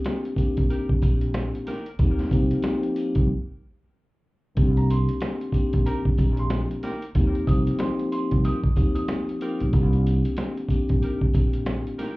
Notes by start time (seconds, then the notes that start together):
Already playing: D#3 A#3 C4 D4 G4
0.05 snare, closed hi-hat, sleigh bells
0.25 closed hi-hat
0.36 D#3 A#3 C4 D4 G4, kick, closed hi-hat, sleigh bells
0.57 A#1, kick, closed hi-hat
0.70 D#4 G4 A#4, closed hi-hat, sleigh bells
0.89 kick
1.02 A#1, kick, closed hi-hat, sleigh bells
1.21 closed hi-hat
1.34 snare, closed hi-hat, sleigh bells
1.55 closed hi-hat
1.67 D#4 G4 A#4, snare, closed hi-hat, sleigh bells
1.86 closed hi-hat
1.99 D#2 F3 A#3 C4 D#4 G4, kick, closed hi-hat, sleigh bells
2.19 snare, closed hi-hat
2.30 C2 F3 A#3 C4 D#4 G4, kick, closed hi-hat, sleigh bells
2.51 closed hi-hat
2.62 F3 A#3 C4 D#4 G4, snare, closed hi-hat, sleigh bells
2.83 closed hi-hat
2.96 closed hi-hat, sleigh bells
3.15 C2, kick, closed hi-hat
4.55 C2 D#3 A#3 C4 D4 G4, kick, closed hi-hat, sleigh bells
4.77 A#5, closed hi-hat
4.90 C6, closed hi-hat, sleigh bells
5.09 closed hi-hat
5.20 snare, closed hi-hat, sleigh bells
5.41 closed hi-hat
5.52 D#3 A#3 C4 D4 G4, kick, closed hi-hat, sleigh bells
5.73 A#1, kick, closed hi-hat
5.86 D#4 G4 A#4 A#5, closed hi-hat, sleigh bells
6.05 kick
6.17 A#1, kick, closed hi-hat, sleigh bells
6.37 C6, closed hi-hat
6.50 snare, closed hi-hat, sleigh bells
6.71 closed hi-hat
6.83 D#4 G4 A#4, snare, closed hi-hat, sleigh bells
7.02 closed hi-hat
7.15 D#2 F3 A#3 C4 D#4 G4, kick, closed hi-hat, sleigh bells
7.35 closed hi-hat
7.47 C2 F3 A#3 C4 D#4 G4 D#6, kick, closed hi-hat, sleigh bells
7.67 closed hi-hat
7.79 F3 A#3 C4 D#4 G4 C6, snare, closed hi-hat, sleigh bells
7.99 closed hi-hat
8.12 C6, closed hi-hat, sleigh bells
8.31 C2, kick, closed hi-hat
8.44 F4 G4 A#4 D#6, closed hi-hat, sleigh bells
8.64 kick
8.75 D#2 F3 A#3 C4 D#4 G4, kick, closed hi-hat, sleigh bells
8.95 D#6, closed hi-hat
9.08 snare, closed hi-hat, sleigh bells
9.29 closed hi-hat
9.40 F3 A#3 C4 D#4 F4 G4 A#4, closed hi-hat, sleigh bells
9.60 B1, closed hi-hat
9.72 C2 D#3 A#3 C4 D4 G4, kick, closed hi-hat, sleigh bells
9.93 closed hi-hat
10.06 closed hi-hat, sleigh bells
10.25 closed hi-hat
10.37 snare, closed hi-hat, sleigh bells
10.57 closed hi-hat
10.68 D#3 A#3 C4 D4 G4, kick, closed hi-hat, sleigh bells
10.89 A#1, kick, closed hi-hat
11.02 D#4 G4 A#4, closed hi-hat, sleigh bells
11.21 kick
11.33 A#1, kick, closed hi-hat, sleigh bells
11.53 closed hi-hat
11.66 snare, closed hi-hat, sleigh bells
11.87 closed hi-hat
11.98 D#4 G4 A#4, snare, closed hi-hat, sleigh bells